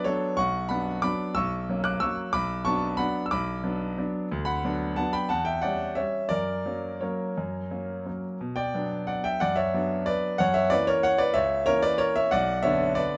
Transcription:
0.04 0.35 F#3 medium
0.04 0.35 B3 medium
0.04 0.35 D4 medium
0.04 0.35 A4 medium
0.04 0.37 C#5 loud
0.37 0.69 B1 medium
0.37 0.68 F#5 medium
0.37 0.69 C#6 loud
0.69 1.00 F#3 medium
0.69 1.00 B3 medium
0.69 1.00 D4 medium
0.69 1.01 F#5 medium
0.69 1.02 B5 loud
1.02 1.33 F#3 medium
1.02 1.33 B3 medium
1.02 1.33 D4 medium
1.02 1.33 B5 medium
1.02 1.35 D6 loud
1.35 1.68 B1 medium
1.35 1.81 C#6 medium
1.35 1.84 E6 loud
1.69 1.99 F#3 medium
1.69 1.99 A#3 medium
1.69 2.00 C#4 medium
1.84 2.00 D6 medium
1.84 2.01 F#6 loud
2.00 2.31 F#3 medium
2.00 2.31 A#3 medium
2.00 2.32 C#4 medium
2.00 2.32 C#6 medium
2.00 2.33 E6 loud
2.33 2.65 B1 medium
2.33 2.64 B5 medium
2.33 2.65 D6 loud
2.65 2.96 F#3 medium
2.65 2.96 B3 medium
2.65 2.97 D4 medium
2.65 2.97 A5 medium
2.65 2.99 C#6 loud
2.97 3.28 F#3 medium
2.97 3.29 B3 medium
2.97 3.29 D4 medium
2.97 3.23 F#5 medium
2.97 3.24 B5 loud
3.26 3.32 E6 medium
3.31 3.63 B1 medium
3.31 4.10 B5 medium
3.31 4.14 D6 loud
3.64 3.94 F#3 medium
3.64 3.94 B3 medium
3.64 3.94 D4 medium
3.98 4.28 F#3 medium
3.98 4.28 B3 medium
3.98 4.28 D4 medium
4.32 4.63 D2 medium
4.45 4.93 F#5 medium
4.45 4.96 B5 loud
4.65 4.95 F#3 medium
4.65 4.95 B3 medium
4.65 4.95 D4 medium
4.96 5.28 F#3 medium
4.96 5.28 B3 medium
4.96 5.28 D4 medium
4.96 5.13 F#5 medium
4.96 5.14 A5 loud
5.13 5.29 G5 medium
5.13 5.30 B5 loud
5.29 5.62 E2 medium
5.29 5.45 F#5 medium
5.29 5.46 A5 loud
5.45 5.62 E5 medium
5.45 5.62 G5 loud
5.62 5.94 G3 medium
5.62 5.95 C#4 medium
5.62 5.95 D5 medium
5.62 5.97 F#5 loud
5.95 6.28 G3 medium
5.95 6.28 C#4 medium
5.95 6.29 C#5 medium
5.95 6.31 E5 medium
6.29 6.65 F#2 medium
6.29 6.97 A#4 medium
6.29 7.00 D5 loud
6.66 6.98 F#3 soft
6.66 6.98 A#3 soft
6.66 6.99 C#4 medium
7.01 7.34 F#3 soft
7.01 7.34 A#3 soft
7.01 7.34 C#4 medium
7.01 8.20 A#4 medium
7.01 8.24 C#5 medium
7.38 7.71 F#2 medium
7.71 8.03 F#3 soft
7.71 8.03 A#3 soft
7.71 8.03 C#4 medium
8.06 8.37 F#3 soft
8.06 8.37 A#3 soft
8.06 8.38 C#4 medium
8.41 8.73 B2 medium
8.56 9.05 D5 medium
8.56 9.08 G5 loud
8.75 9.38 F#3 medium
8.75 9.38 B3 medium
8.75 9.39 D4 medium
9.07 9.24 D5 medium
9.07 9.25 F#5 medium
9.24 9.40 E5 medium
9.24 9.41 G5 loud
9.40 9.74 F#2 medium
9.40 9.57 D5 medium
9.40 9.57 F#5 loud
9.56 10.04 C#5 medium
9.56 10.07 E5 loud
9.74 10.36 F#3 medium
9.74 10.37 B3 medium
9.74 10.37 D4 medium
10.06 10.38 B4 medium
10.06 10.40 D5 loud
10.38 10.71 F#2 medium
10.38 10.54 C#5 loud
10.38 10.55 F#5 loud
10.54 10.71 C#5 medium
10.54 10.71 E5 loud
10.70 11.33 E3 medium
10.70 11.33 A#3 medium
10.70 11.33 C#4 medium
10.70 10.87 B4 loud
10.70 10.88 D5 loud
10.87 11.04 A#4 medium
10.87 11.03 C#5 loud
11.03 11.20 C#5 loud
11.03 11.20 F#5 loud
11.18 11.35 B4 medium
11.18 11.35 D5 loud
11.34 11.67 C#2 medium
11.34 11.64 C#5 loud
11.34 11.67 E5 loud
11.66 12.29 E3 medium
11.66 12.29 A#3 medium
11.66 12.30 C#4 medium
11.66 11.82 A#4 loud
11.66 11.83 C#5 loud
11.83 11.99 B4 medium
11.83 12.00 D5 loud
11.98 12.15 A#4 medium
11.98 12.15 C#5 loud
12.16 12.32 C#5 medium
12.16 12.32 E5 loud
12.31 12.64 B1 medium
12.31 12.62 D5 loud
12.31 12.64 F#5 loud
12.63 13.17 D3 medium
12.63 13.17 B3 medium
12.63 13.17 D4 medium
12.63 12.95 C#5 loud
12.63 12.97 E5 loud
12.95 13.17 B4 medium
12.95 13.17 D5 loud

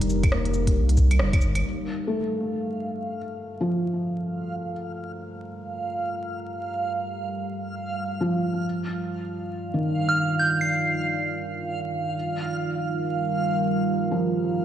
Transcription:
0.00 0.78 F1 loud
0.00 1.60 G3 medium
0.00 1.60 D#4 medium
0.00 1.60 A#4 medium
0.00 closed hi-hat soft
0.10 cabasa medium
0.23 kick loud
0.23 closed hi-hat medium
0.23 claves medium
0.32 1.42 A#3 medium
0.32 cross-stick loud
0.45 closed hi-hat soft
0.54 cabasa medium
0.67 kick medium
0.67 closed hi-hat medium
0.76 1.21 C2 medium
0.89 closed hi-hat soft
0.97 kick medium
0.97 cabasa medium
1.11 closed hi-hat medium
1.11 claves medium
1.19 1.40 F1 loud
1.19 cross-stick loud
1.33 kick medium
1.33 closed hi-hat soft
1.33 claves medium
1.41 1.62 G1 medium
1.41 cabasa medium
1.55 closed hi-hat medium
1.55 claves medium
1.64 12.11 G3 medium
1.64 5.11 F4 medium
1.64 14.65 F5 medium
1.64 8.60 A#5 medium
2.07 3.17 A3 medium
3.61 4.70 F3 medium
5.13 8.60 G4 medium
8.21 8.82 F3 medium
8.64 14.65 D#4 medium
8.64 14.65 F4 medium
8.64 12.11 D5 medium
9.74 10.83 D#3 soft
10.09 10.32 F6 medium
10.39 10.60 G6 medium
10.61 11.23 C7 medium
12.14 14.65 G3 medium
12.14 14.65 A#4 medium
14.11 14.65 F3 medium

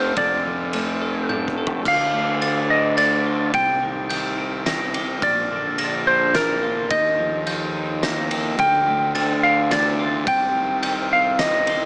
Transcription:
0.00 0.13 F1 medium
0.00 0.17 F3 soft
0.00 0.45 A3 medium
0.00 1.02 D4 medium
0.00 1.00 A4 medium
0.00 0.17 C5 medium
0.00 0.45 F6 medium
0.17 1.82 F1 medium
0.17 0.44 F3 medium
0.17 1.26 D5 medium
0.17 kick medium
0.17 ride soft
0.45 1.85 F3 soft
0.73 1.86 A3 medium
0.73 ride soft
1.01 1.56 A4 medium
1.29 1.86 D4 medium
1.29 1.86 G6 medium
1.29 high tom soft
1.48 kick soft
1.58 1.86 A4 medium
1.67 floor tom medium
1.85 3.51 D2 medium
1.85 2.41 D3 medium
1.85 2.70 F5 medium
1.85 2.42 F6 medium
1.85 kick medium
1.85 crash medium
2.14 2.97 A3 medium
2.42 3.54 D3 medium
2.42 2.96 A6 medium
2.42 ride soft
2.70 3.54 D4 medium
2.70 2.97 D#5 medium
2.97 3.54 A3 medium
2.97 3.50 D5 medium
2.97 3.54 A6 medium
2.97 ride soft
3.26 3.54 F4 medium
3.54 5.19 C2 medium
3.54 4.95 C3 medium
3.54 4.91 G5 medium
3.54 4.08 G6 medium
3.54 kick medium
3.54 ride soft
3.82 4.10 D#3 medium
4.10 5.23 D#3 medium
4.10 4.66 G6 medium
4.10 ride soft
4.38 5.22 C4 medium
4.66 5.23 G3 medium
4.66 5.22 A#6 medium
4.66 snare medium
4.66 ride soft
4.94 5.23 G4 medium
4.94 ride soft
5.22 6.87 A#1 medium
5.22 6.63 A#2 medium
5.22 6.10 D5 medium
5.22 5.79 F6 medium
5.22 kick medium
5.22 ride medium
5.51 5.78 D3 medium
5.78 6.91 D3 medium
5.78 6.35 A#6 medium
5.78 ride soft
6.07 6.91 D4 medium
6.07 6.36 C5 medium
6.34 6.91 A#3 medium
6.34 6.93 A#4 medium
6.34 6.91 A6 medium
6.34 snare medium
6.34 ride soft
6.63 6.93 F4 medium
6.90 8.56 D#2 medium
6.90 8.31 D#3 medium
6.90 8.27 D#5 medium
6.90 7.46 G6 medium
6.90 kick medium
6.90 ride soft
7.18 7.45 F3 medium
7.47 8.59 F3 medium
7.47 8.03 G6 medium
7.47 ride soft
7.75 8.59 D#4 medium
8.03 8.59 A#3 medium
8.03 8.59 A#6 medium
8.03 snare medium
8.03 ride soft
8.31 8.59 G4 medium
8.31 ride soft
8.59 10.24 D2 medium
8.59 9.14 D3 medium
8.59 9.43 G5 medium
8.59 9.15 F6 medium
8.59 kick medium
8.59 ride soft
8.87 9.70 A3 medium
9.15 10.27 D3 medium
9.15 9.70 A6 medium
9.15 ride soft
9.43 10.27 D4 medium
9.43 9.72 F5 medium
9.71 10.27 A3 medium
9.71 10.29 D5 medium
9.71 10.27 A6 medium
9.71 snare medium
9.71 ride medium
9.99 10.27 F4 medium
10.27 11.85 C2 medium
10.27 11.67 C3 medium
10.27 11.12 G5 medium
10.27 10.81 G6 medium
10.27 kick medium
10.27 ride medium
10.55 10.82 D#3 medium
10.83 11.85 D#3 medium
10.83 11.39 G6 medium
10.83 ride soft
11.11 11.85 C4 medium
11.11 11.41 F5 medium
11.39 11.85 G3 medium
11.39 11.85 D#5 medium
11.39 11.85 A#6 medium
11.39 snare medium
11.39 ride medium
11.67 11.85 G4 medium
11.67 ride soft

